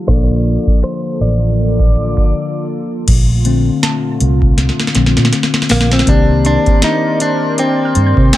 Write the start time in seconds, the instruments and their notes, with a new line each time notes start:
Already playing: analog synth pad F4 A4
0.07 fingered electric bass A#1, analog synth pad D3 A#3, tine electric piano F3 A#3 D4 A4, clean electric guitar D5, synth pluck F5, kick, closed hi-hat
0.67 muted fingered electric bass stroke, kick, closed hi-hat
0.83 clean electric guitar C5, finger snap
1.08 closed hi-hat
1.21 fingered electric bass A1, clean electric guitar D5, open hi-hat
1.58 closed hi-hat
1.80 kick
1.95 closed hi-hat
2.17 kick
3.08 fingered electric bass A#1, analog synth pad A#2 D3 A3 F4, kick, closed hi-hat, crash
3.45 tine electric piano D3 A3 C4, closed hi-hat
3.83 synth pluck A5, snare, closed hi-hat
4.20 fingered electric bass C2, closed hi-hat
4.42 kick
4.58 snare, closed hi-hat
4.69 snare
4.80 snare
4.87 snare
4.95 fingered electric bass A#1, tine electric piano D3 A3 C4, snare, closed hi-hat
5.06 snare
5.17 fingered electric bass A#2, snare
5.25 snare
5.33 snare, closed hi-hat
5.43 snare
5.54 snare
5.62 snare
5.69 fingered electric bass A#1, clean electric guitar A#3, snare, open hi-hat
5.81 snare
5.91 clean electric guitar C4, snare
5.99 snare
6.06 fingered electric bass C2, tine electric piano D#3 A#3 C4 G4 D5, clean electric guitar D4, analog synth pad A#4 C5 D5 C6, kick, closed hi-hat
6.45 clean electric guitar D4, synth pluck C6, closed hi-hat
6.66 muted fingered electric bass stroke, kick, closed hi-hat
6.82 clean electric guitar D#4, snare, closed hi-hat
7.20 clean electric guitar D4, closed hi-hat
7.58 clean electric guitar C4, synth pluck D6, closed hi-hat
7.85 synth pluck F6
7.95 fingered electric bass G2, closed hi-hat
8.06 synth pluck G6
8.17 fingered electric bass C3, kick
8.33 synth pluck G5, snare, closed hi-hat